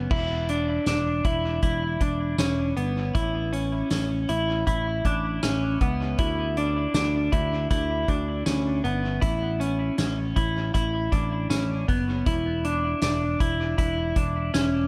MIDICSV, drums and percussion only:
0, 0, Header, 1, 2, 480
1, 0, Start_track
1, 0, Tempo, 759494
1, 70, Time_signature, 4, 2, 24, 8
1, 9401, End_track
2, 0, Start_track
2, 0, Title_t, "Drums"
2, 68, Note_on_c, 9, 49, 105
2, 69, Note_on_c, 9, 36, 122
2, 131, Note_off_c, 9, 49, 0
2, 132, Note_off_c, 9, 36, 0
2, 307, Note_on_c, 9, 42, 56
2, 370, Note_off_c, 9, 42, 0
2, 544, Note_on_c, 9, 42, 73
2, 546, Note_on_c, 9, 38, 112
2, 548, Note_on_c, 9, 54, 61
2, 607, Note_off_c, 9, 42, 0
2, 610, Note_off_c, 9, 38, 0
2, 611, Note_off_c, 9, 54, 0
2, 787, Note_on_c, 9, 42, 53
2, 788, Note_on_c, 9, 36, 93
2, 850, Note_off_c, 9, 42, 0
2, 851, Note_off_c, 9, 36, 0
2, 1026, Note_on_c, 9, 42, 63
2, 1029, Note_on_c, 9, 36, 83
2, 1089, Note_off_c, 9, 42, 0
2, 1092, Note_off_c, 9, 36, 0
2, 1268, Note_on_c, 9, 36, 77
2, 1268, Note_on_c, 9, 42, 56
2, 1331, Note_off_c, 9, 36, 0
2, 1331, Note_off_c, 9, 42, 0
2, 1506, Note_on_c, 9, 54, 65
2, 1507, Note_on_c, 9, 38, 119
2, 1511, Note_on_c, 9, 42, 77
2, 1570, Note_off_c, 9, 54, 0
2, 1571, Note_off_c, 9, 38, 0
2, 1574, Note_off_c, 9, 42, 0
2, 1750, Note_on_c, 9, 42, 42
2, 1813, Note_off_c, 9, 42, 0
2, 1990, Note_on_c, 9, 36, 122
2, 1991, Note_on_c, 9, 42, 68
2, 2054, Note_off_c, 9, 36, 0
2, 2054, Note_off_c, 9, 42, 0
2, 2232, Note_on_c, 9, 42, 56
2, 2295, Note_off_c, 9, 42, 0
2, 2466, Note_on_c, 9, 42, 72
2, 2469, Note_on_c, 9, 38, 112
2, 2471, Note_on_c, 9, 54, 67
2, 2530, Note_off_c, 9, 42, 0
2, 2532, Note_off_c, 9, 38, 0
2, 2534, Note_off_c, 9, 54, 0
2, 2709, Note_on_c, 9, 42, 60
2, 2773, Note_off_c, 9, 42, 0
2, 2952, Note_on_c, 9, 36, 83
2, 2952, Note_on_c, 9, 42, 61
2, 3015, Note_off_c, 9, 36, 0
2, 3016, Note_off_c, 9, 42, 0
2, 3191, Note_on_c, 9, 36, 85
2, 3192, Note_on_c, 9, 42, 57
2, 3254, Note_off_c, 9, 36, 0
2, 3255, Note_off_c, 9, 42, 0
2, 3430, Note_on_c, 9, 54, 68
2, 3431, Note_on_c, 9, 38, 114
2, 3434, Note_on_c, 9, 42, 72
2, 3493, Note_off_c, 9, 54, 0
2, 3494, Note_off_c, 9, 38, 0
2, 3497, Note_off_c, 9, 42, 0
2, 3670, Note_on_c, 9, 42, 41
2, 3672, Note_on_c, 9, 36, 88
2, 3733, Note_off_c, 9, 42, 0
2, 3735, Note_off_c, 9, 36, 0
2, 3908, Note_on_c, 9, 42, 70
2, 3911, Note_on_c, 9, 36, 119
2, 3971, Note_off_c, 9, 42, 0
2, 3974, Note_off_c, 9, 36, 0
2, 4151, Note_on_c, 9, 42, 51
2, 4214, Note_off_c, 9, 42, 0
2, 4386, Note_on_c, 9, 42, 75
2, 4389, Note_on_c, 9, 38, 106
2, 4391, Note_on_c, 9, 54, 67
2, 4450, Note_off_c, 9, 42, 0
2, 4452, Note_off_c, 9, 38, 0
2, 4454, Note_off_c, 9, 54, 0
2, 4629, Note_on_c, 9, 42, 55
2, 4630, Note_on_c, 9, 36, 89
2, 4692, Note_off_c, 9, 42, 0
2, 4693, Note_off_c, 9, 36, 0
2, 4869, Note_on_c, 9, 42, 76
2, 4871, Note_on_c, 9, 36, 82
2, 4933, Note_off_c, 9, 42, 0
2, 4934, Note_off_c, 9, 36, 0
2, 5108, Note_on_c, 9, 36, 81
2, 5108, Note_on_c, 9, 42, 56
2, 5171, Note_off_c, 9, 42, 0
2, 5172, Note_off_c, 9, 36, 0
2, 5348, Note_on_c, 9, 54, 68
2, 5349, Note_on_c, 9, 38, 120
2, 5352, Note_on_c, 9, 42, 77
2, 5411, Note_off_c, 9, 54, 0
2, 5412, Note_off_c, 9, 38, 0
2, 5415, Note_off_c, 9, 42, 0
2, 5590, Note_on_c, 9, 42, 39
2, 5653, Note_off_c, 9, 42, 0
2, 5828, Note_on_c, 9, 42, 67
2, 5829, Note_on_c, 9, 36, 117
2, 5891, Note_off_c, 9, 42, 0
2, 5893, Note_off_c, 9, 36, 0
2, 6072, Note_on_c, 9, 42, 57
2, 6135, Note_off_c, 9, 42, 0
2, 6307, Note_on_c, 9, 42, 73
2, 6310, Note_on_c, 9, 38, 105
2, 6311, Note_on_c, 9, 54, 67
2, 6370, Note_off_c, 9, 42, 0
2, 6373, Note_off_c, 9, 38, 0
2, 6374, Note_off_c, 9, 54, 0
2, 6549, Note_on_c, 9, 42, 58
2, 6550, Note_on_c, 9, 36, 91
2, 6612, Note_off_c, 9, 42, 0
2, 6614, Note_off_c, 9, 36, 0
2, 6789, Note_on_c, 9, 42, 70
2, 6791, Note_on_c, 9, 36, 74
2, 6853, Note_off_c, 9, 42, 0
2, 6854, Note_off_c, 9, 36, 0
2, 7030, Note_on_c, 9, 36, 89
2, 7030, Note_on_c, 9, 42, 49
2, 7093, Note_off_c, 9, 36, 0
2, 7094, Note_off_c, 9, 42, 0
2, 7271, Note_on_c, 9, 54, 71
2, 7272, Note_on_c, 9, 38, 118
2, 7275, Note_on_c, 9, 42, 77
2, 7334, Note_off_c, 9, 54, 0
2, 7335, Note_off_c, 9, 38, 0
2, 7338, Note_off_c, 9, 42, 0
2, 7512, Note_on_c, 9, 36, 88
2, 7513, Note_on_c, 9, 42, 39
2, 7576, Note_off_c, 9, 36, 0
2, 7576, Note_off_c, 9, 42, 0
2, 7750, Note_on_c, 9, 42, 70
2, 7751, Note_on_c, 9, 36, 125
2, 7813, Note_off_c, 9, 42, 0
2, 7814, Note_off_c, 9, 36, 0
2, 7991, Note_on_c, 9, 42, 59
2, 8054, Note_off_c, 9, 42, 0
2, 8225, Note_on_c, 9, 42, 68
2, 8228, Note_on_c, 9, 38, 115
2, 8230, Note_on_c, 9, 54, 70
2, 8288, Note_off_c, 9, 42, 0
2, 8291, Note_off_c, 9, 38, 0
2, 8293, Note_off_c, 9, 54, 0
2, 8471, Note_on_c, 9, 36, 91
2, 8471, Note_on_c, 9, 42, 61
2, 8534, Note_off_c, 9, 36, 0
2, 8534, Note_off_c, 9, 42, 0
2, 8710, Note_on_c, 9, 42, 63
2, 8712, Note_on_c, 9, 36, 83
2, 8773, Note_off_c, 9, 42, 0
2, 8775, Note_off_c, 9, 36, 0
2, 8948, Note_on_c, 9, 42, 57
2, 8950, Note_on_c, 9, 36, 85
2, 9011, Note_off_c, 9, 42, 0
2, 9013, Note_off_c, 9, 36, 0
2, 9191, Note_on_c, 9, 54, 70
2, 9192, Note_on_c, 9, 38, 123
2, 9195, Note_on_c, 9, 42, 68
2, 9254, Note_off_c, 9, 54, 0
2, 9255, Note_off_c, 9, 38, 0
2, 9258, Note_off_c, 9, 42, 0
2, 9401, End_track
0, 0, End_of_file